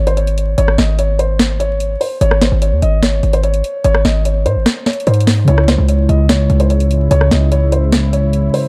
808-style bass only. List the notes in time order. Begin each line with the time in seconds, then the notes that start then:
Already playing: G#1
0.58 G#1
0.78 G#1
2.21 G#1
2.52 G#1
2.72 D#2
2.82 G#1
3.23 G#1
3.84 G#1
4.05 G#1
4.46 G#2
4.56 G#1
5.07 G#2
5.48 C#2
5.78 C#2
6.09 C#2
6.50 C#2
7.11 C#2
7.31 C#2